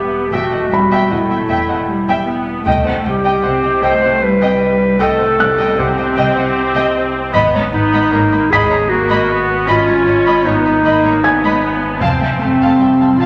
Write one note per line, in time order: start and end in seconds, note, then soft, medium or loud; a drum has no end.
0.00 2.67 E1 medium
0.00 0.32 B3 soft
0.00 0.33 G4 soft
0.00 0.68 D#6 soft
0.32 0.40 E1 soft
0.32 0.40 E2 soft
0.32 0.70 A3 soft
0.32 1.13 F#4 soft
0.32 0.51 E5 soft
0.32 0.51 G5 soft
0.52 0.60 E2 soft
0.52 0.60 D#5 soft
0.52 0.60 F#5 soft
0.71 0.79 E1 soft
0.71 0.80 E2 soft
0.71 1.10 G3 soft
0.71 0.79 E5 soft
0.71 0.79 G5 soft
0.71 3.02 B5 soft
0.91 0.99 E2 soft
0.91 1.09 E5 soft
0.91 1.09 G5 medium
1.11 1.18 E1 soft
1.11 1.18 E2 soft
1.11 1.88 A3 soft
1.11 2.67 E4 medium
1.11 1.19 D#5 soft
1.11 1.19 F#5 soft
1.30 1.37 E2 soft
1.30 1.38 E5 soft
1.30 1.38 G5 soft
1.49 1.57 E1 soft
1.49 1.58 E2 soft
1.49 1.67 E5 soft
1.49 1.67 G5 soft
1.69 1.77 E2 soft
1.69 1.77 D#5 soft
1.69 1.77 F#5 soft
1.89 2.27 G3 soft
2.08 2.16 E2 soft
2.08 2.26 E5 soft
2.08 2.26 G5 soft
2.26 2.66 B3 soft
2.66 7.36 C2 medium
2.66 2.75 C2 medium
2.66 2.74 C3 soft
2.66 3.04 A3 soft
2.66 2.85 D#5 soft
2.66 2.84 G5 medium
2.66 taiko medium
2.86 2.93 C3 soft
2.86 2.93 C5 soft
2.86 2.94 F#5 soft
3.05 3.14 C2 soft
3.05 3.13 C3 soft
3.05 3.44 G3 soft
3.05 3.85 G4 medium
3.05 3.13 D#5 soft
3.05 3.13 G5 soft
3.24 3.33 C3 medium
3.24 3.42 D#5 soft
3.24 3.42 G5 medium
3.43 3.52 C2 soft
3.43 3.52 C3 soft
3.43 3.83 C4 soft
3.43 3.51 C5 soft
3.43 3.51 F#5 soft
3.63 3.72 C3 soft
3.63 3.71 D#5 soft
3.63 3.71 G5 soft
3.82 3.91 C2 soft
3.82 3.91 C3 medium
3.82 4.22 A3 soft
3.82 4.24 C5 medium
3.82 4.01 D#5 medium
3.82 4.01 G5 medium
4.02 4.11 C3 soft
4.02 4.10 C5 soft
4.02 4.10 F#5 soft
4.21 5.00 G3 soft
4.21 5.00 B4 medium
4.41 4.50 C3 medium
4.41 4.59 D#5 medium
4.41 4.60 G5 medium
4.99 5.08 C2 medium
4.99 5.08 C3 medium
4.99 5.38 A3 medium
4.99 5.80 A4 medium
4.99 5.18 D#5 medium
4.99 5.18 G5 medium
5.19 5.27 C3 soft
5.19 5.27 C5 soft
5.19 5.27 F#5 soft
5.38 5.47 C2 soft
5.38 5.47 C3 soft
5.38 5.78 G3 medium
5.38 5.46 D#5 soft
5.38 5.46 G5 soft
5.38 7.69 F#6 soft
5.57 5.67 C3 medium
5.57 5.76 D#5 medium
5.57 5.76 G5 medium
5.78 5.86 C2 soft
5.78 5.86 C3 soft
5.78 7.34 C4 medium
5.78 7.34 G4 medium
5.78 5.86 C5 soft
5.78 5.86 F#5 soft
5.97 6.05 C3 soft
5.97 6.05 D#5 soft
5.97 6.05 G5 soft
6.17 6.25 C2 medium
6.17 6.25 C3 medium
6.17 6.35 D#5 medium
6.17 6.35 G5 medium
6.36 6.45 C3 soft
6.36 6.44 C5 medium
6.36 6.44 F#5 soft
6.74 6.83 C3 medium
6.74 6.93 D#5 medium
6.74 6.93 G5 medium
7.34 7.42 G#1 medium
7.34 12.03 G#1 medium
7.34 7.42 G#2 medium
7.34 7.72 B3 medium
7.34 7.52 D#5 medium
7.34 7.52 B5 medium
7.34 taiko medium
7.54 7.62 G#2 soft
7.54 7.62 C#5 soft
7.54 7.62 A#5 soft
7.73 7.81 G#1 soft
7.73 7.81 G#2 soft
7.73 8.11 B3 medium
7.73 8.53 D#4 medium
7.73 7.81 D#5 soft
7.73 7.81 B5 soft
7.93 8.01 G#2 medium
7.93 8.11 D#5 medium
7.93 8.11 B5 medium
8.12 8.20 G#1 soft
8.12 8.20 G#2 soft
8.12 8.51 A#3 medium
8.12 8.20 C#5 soft
8.12 8.20 A#5 soft
8.32 8.39 G#2 soft
8.32 8.40 D#5 soft
8.32 8.40 B5 soft
8.51 8.59 G#1 medium
8.51 8.59 G#2 medium
8.51 8.89 G#3 medium
8.51 8.91 G#4 medium
8.51 8.69 D#5 medium
8.51 8.69 B5 medium
8.51 10.81 B6 soft
8.51 taiko soft
8.70 8.79 G#2 soft
8.70 8.78 C#5 soft
8.70 8.78 A#5 soft
8.89 9.29 A#3 medium
8.89 9.67 F#4 medium
9.09 9.18 G#2 medium
9.09 9.27 D#5 medium
9.09 9.27 B5 medium
9.29 9.68 B3 medium
9.67 9.75 G#1 medium
9.67 9.76 G#2 medium
9.67 10.46 C#4 medium
9.67 10.47 F4 medium
9.67 9.86 D#5 medium
9.67 9.85 B5 medium
9.88 9.95 G#2 soft
9.88 9.95 C#5 soft
9.88 9.96 A#5 soft
10.06 10.14 G#1 soft
10.06 10.15 G#2 soft
10.06 10.14 D#5 soft
10.06 10.14 B5 soft
10.26 10.34 G#2 medium
10.26 10.44 D#5 medium
10.26 10.44 B5 medium
10.44 10.53 G#1 soft
10.44 10.54 G#2 soft
10.44 10.84 B3 medium
10.44 12.01 D#4 medium
10.44 10.53 C#5 soft
10.44 10.54 A#5 soft
10.65 10.74 G#2 soft
10.65 10.73 D#5 soft
10.65 10.73 B5 soft
10.84 10.92 G#1 medium
10.84 10.93 G#2 medium
10.84 11.23 A#3 medium
10.84 11.02 D#5 medium
10.84 11.03 B5 medium
11.05 11.12 G#2 soft
11.05 11.12 C#5 soft
11.05 11.12 A#5 soft
11.22 12.01 B3 medium
11.22 13.26 G#5 soft
11.22 13.26 G#6 soft
11.43 11.51 G#2 medium
11.43 11.61 D#5 soft
11.43 11.62 B5 medium
12.00 12.09 F1 medium
12.00 13.26 F1 medium
12.00 12.09 F2 medium
12.00 12.40 C4 medium
12.00 12.19 F5 medium
12.00 12.19 A5 medium
12.00 13.26 A5 soft
12.00 13.26 C6 soft
12.00 taiko medium
12.21 12.29 F2 soft
12.21 12.29 E5 soft
12.21 12.29 G5 soft
12.40 12.48 F1 soft
12.40 12.48 F2 soft
12.40 12.79 A3 soft
12.40 13.19 C4 medium
12.40 12.49 F5 soft
12.40 12.49 A5 soft
12.60 12.67 F2 medium
12.60 12.79 F5 soft
12.60 12.79 A5 medium
12.78 12.87 F1 soft
12.78 12.87 F2 soft
12.78 13.18 G3 soft
12.78 12.88 E5 soft
12.78 12.88 G5 soft
12.78 13.26 B5 soft
12.99 13.06 F2 soft
12.99 13.07 F5 soft
12.99 13.08 A5 soft
13.17 13.26 F1 soft
13.17 13.26 F2 soft
13.17 13.26 F3 soft
13.17 13.26 F4 medium
13.17 13.26 F5 soft
13.17 13.26 A5 soft
13.17 taiko soft